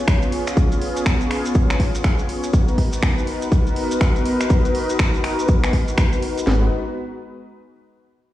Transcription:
Already playing: B3 C#4 F4 G#4 C#5
0.08 finger snap, kick, closed hi-hat, maracas
0.22 closed hi-hat, maracas
0.32 open hi-hat
0.47 finger snap, closed hi-hat, maracas
0.57 kick, closed hi-hat, maracas
0.72 closed hi-hat, maracas
0.81 open hi-hat
0.97 closed hi-hat, maracas
1.06 finger snap, kick, closed hi-hat, maracas
1.21 maracas
1.31 finger snap, open hi-hat
1.45 closed hi-hat, maracas
1.55 kick, closed hi-hat, maracas
1.70 finger snap, closed hi-hat, maracas
1.80 kick, open hi-hat
1.95 closed hi-hat, maracas
2.04 finger snap, kick, closed hi-hat, maracas
2.19 closed hi-hat, maracas
2.29 open hi-hat
2.43 closed hi-hat, maracas
2.53 B3 D#4 F#4 A#4 B4, kick, closed hi-hat, maracas
2.68 closed hi-hat, maracas
2.78 kick, open hi-hat
2.93 closed hi-hat, maracas
3.03 finger snap, kick, closed hi-hat, maracas
3.18 maracas
3.27 open hi-hat
3.42 closed hi-hat, maracas
3.52 kick, closed hi-hat, maracas
3.67 closed hi-hat, maracas
3.76 open hi-hat
3.91 closed hi-hat, maracas
4.01 finger snap, kick, closed hi-hat, maracas
4.16 closed hi-hat, maracas
4.26 open hi-hat
4.41 finger snap, closed hi-hat, maracas
4.50 kick, closed hi-hat, maracas
4.65 closed hi-hat, maracas
4.75 open hi-hat
4.89 closed hi-hat, maracas
4.99 finger snap, kick, closed hi-hat, maracas
5.14 closed hi-hat, maracas
5.24 finger snap, open hi-hat
5.39 closed hi-hat, maracas
5.48 kick, closed hi-hat, maracas
5.64 finger snap, closed hi-hat, maracas
5.73 kick, open hi-hat
5.88 closed hi-hat, maracas
5.98 finger snap, kick, closed hi-hat, maracas
6.13 closed hi-hat, maracas
6.22 open hi-hat
6.38 closed hi-hat, maracas
6.47 G#1 G#3 B3 D#4 F#4 B4, snare, clap

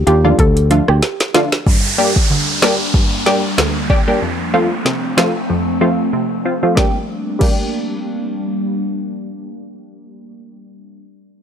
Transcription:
0.07 D#2 D4 F4 G4, closed hi-hat
0.24 D3 F3 A3 D4 F4
0.39 D2 A4, kick, closed hi-hat
0.57 closed hi-hat
0.71 D3 F3 A3 D4 F4, closed hi-hat
0.88 D2 G4, cross-stick
1.02 snare, closed hi-hat
1.20 snare, closed hi-hat
1.34 D3 F3 A3 D4 F4, snare, closed hi-hat
1.52 snare
1.66 G2 G3 A#3 D4, kick, downlifter
1.98 G3 A#3 D4 G4
2.16 kick
2.30 D2
2.62 G3 A#3 D4 G4, cross-stick, snare
2.94 G2, kick
3.26 G3 A#3 D4 G4, snare
3.58 D2, cross-stick, snare
3.90 D4 G4, kick
4.08 G3 A#3 D4 G4
4.22 F2 F3 A3 C4
4.54 F3 A3 C4 F4
4.85 C3, snare
5.17 F3 A3 C4 F4, cross-stick, snare
5.50 F2
5.81 F3 A3 C4 F4
6.13 C3
6.45 C4 F4
6.63 F3 A3 C4 F4
6.75 G3 A#3 D4 G4, kick, snare
7.39 G3 A#3 D4, kick, crash
7.43 G4

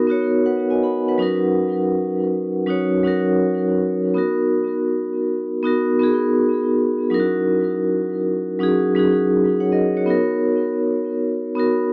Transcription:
Already playing: B3 D#4 F#4 A#4
0.07 B3 D#4 F#4
0.11 C#5
0.46 B4 F#5
0.70 D#5 G#5
0.83 F#5 B5
1.08 B4 F#5
1.18 F#3 C#4 D#4 F#4
1.22 A#4
2.66 F#3 C#4 D#4 F#4
2.70 C#5
3.03 F#3 C#4 D#4 F#4
3.07 A#4
4.14 B3 D#4 F#4
4.18 A#4
5.63 B3 D#4 F#4
5.67 A#4
5.99 B3 D#4 F#4
6.03 G#4
7.10 F#3 C#4 D#4 E4
7.14 A#4
7.20 F#4
8.59 F#3 C#4 D#4 F#4
8.63 G#4
8.95 F#3 C#4 D#4 F#4
8.99 G#4
9.60 C#5 F#5
9.72 A#4 D#5
9.97 F#4 C#5
10.06 B3 D#4 F#4
10.10 A#4
11.55 B3 D#4 F#4
11.59 A#4

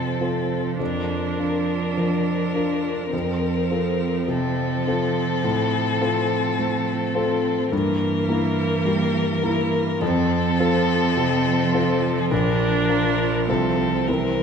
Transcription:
Already playing: F2 C3 F3 C4 F4 A4
0.21 C4 F4 A4
0.80 F2 D4 A#4
1.39 D4 F4 A#4
1.97 F3
2.54 D4 F4 A#4
3.12 F2 F3 C4
3.70 C4 F4 A4
4.28 C3 A4
4.87 C4 F4 A4
5.44 A2
6.01 C4 F4 A4
6.59 A3
7.15 C4 F4 A4
7.71 G2 E3 A#3 A#4
8.29 A#3 E4 A#4
8.85 G3
9.43 A#3 E4 A#4
10.01 F2 F3 C4 A4
10.59 C4 F4 A4
11.17 C3
11.74 C4 F4 A4
12.31 A#1 D4 A#4
12.89 F4 A#4
13.48 C2 C4 F4 A4
14.08 C2 E3 C4 E4 A#4

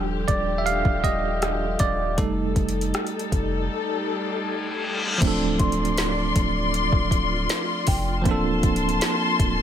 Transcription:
Already playing: D#1 D3 F3 G3 D4 G4
0.28 D#1 D5, kick, closed hi-hat
0.58 E5
0.66 F5, closed hi-hat
0.85 D#1, kick
1.04 D#5, kick, closed hi-hat
1.42 cross-stick, closed hi-hat
1.79 D#1 D5, kick, closed hi-hat
2.18 F1 G3 A3 D#4 A4, kick, closed hi-hat
2.56 F1, kick, closed hi-hat
2.69 closed hi-hat
2.81 closed hi-hat
2.94 cross-stick, closed hi-hat
3.07 closed hi-hat
3.19 closed hi-hat
3.32 F1, kick, closed hi-hat
3.70 reverse cymbal
5.18 D1 F3 A3 F4 D5 C6, kick, closed hi-hat, crash, impact
5.23 C4 D4
5.27 A4
5.60 D1 C6, kick, closed hi-hat
5.72 closed hi-hat
5.85 closed hi-hat
5.98 snare, closed hi-hat
6.36 D1, kick, closed hi-hat
6.74 closed hi-hat
6.92 D1, kick
7.11 kick, closed hi-hat
7.49 snare, closed hi-hat
7.87 F1 G5, kick, open hi-hat
8.22 F3 A#3, kick, closed hi-hat
8.26 D1 A#3 C4 D4 A5 C6
8.31 A4
8.63 D1, kick, closed hi-hat
8.76 closed hi-hat
8.89 closed hi-hat
9.01 snare, closed hi-hat
9.40 D1, kick, closed hi-hat

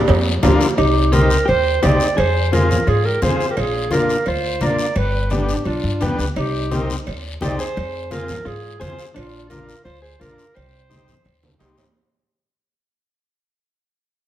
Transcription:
Already playing: A#4 D5
0.08 F2, cowbell, high conga, low timbale, long guiro
0.43 D2 D4 F4 A#4, cowbell, high conga, low conga, low timbale, short guiro
0.61 low timbale, short guiro
0.78 C2 D#4 G4, cowbell, high conga, long guiro
1.12 C4 D#4 G4 A#4, cowbell, high conga, short guiro
1.30 short guiro
1.45 D#2 G4 C5, cowbell, high conga, long guiro
1.82 C2 C4 D#4 G4 D5, cowbell, high conga, low timbale, short guiro
2.00 short guiro
2.17 F2 G#4 C5, cowbell, high conga, long guiro
2.52 C4 F4 G#4 A#4, cowbell, high conga, short guiro
2.71 low conga, short guiro
2.87 G#2 F4 G#4, cowbell, high conga, long guiro
3.05 G4 A#4
3.22 F2 C4 F4 G#4 C5, cowbell, high conga, low conga, short guiro
3.40 short guiro
3.51 G4 A#4
3.56 A#1 F4 G#4, cowbell, high conga, long guiro
3.91 A#3 D4 F4 A#4, cowbell, high conga, short guiro
4.09 short guiro
4.26 D2 F4 C5, cowbell, high conga, long guiro
4.61 A#1 A#3 D4 F4 A#4 D5, cowbell, high conga, short guiro
4.79 short guiro
4.96 G1 G4 B4, cowbell, high conga, long guiro
5.30 B3 D4 G4, cowbell, high conga, short guiro
5.49 short guiro
5.65 B1 D4 F4, cowbell, high conga, long guiro
5.83 G2
6.01 F2 B3 D4 G4 B4, cowbell, high conga, low conga, short guiro
6.18 D2, short guiro
6.36 C2 D#4 G4, cowbell, high conga, long guiro
6.71 C4 D#4 G4 A#4, cowbell, high conga, short guiro
6.90 short guiro
7.06 D#2, cowbell, high conga, long guiro
7.41 C2 C4 D#4 G4 D5, cowbell, high conga, short guiro
7.59 G#4 C5, short guiro
7.77 F2, cowbell, long guiro
8.10 C4 F4 G#4 A#4, cowbell, high conga, short guiro
8.28 low conga, short guiro
8.45 G#2 F4 G#4, cowbell, high conga, long guiro
8.80 F2 C4 F4 G#4 C5, cowbell, high conga, low conga, short guiro
8.99 short guiro
9.14 A#1 D4 F4, cowbell, high conga, long guiro
9.50 D4 F4 A#4, cowbell, high conga, short guiro
9.69 short guiro
9.84 D2 F4 C5, cowbell, high conga, long guiro
10.02 G#4 C5
10.20 A#1 D4 F4 A#4, cowbell, high conga, short guiro
10.38 short guiro
10.55 C2 G4 C5, cowbell, high conga, long guiro
10.90 D#4 G4 C5, cowbell, high conga, short guiro
11.08 low conga, short guiro
11.25 D#2, cowbell, high conga, long guiro
11.43 high conga, high timbale
11.59 C2 D#4 G4 C5, cowbell, low timbale, short guiro
11.78 low conga, low timbale, short guiro

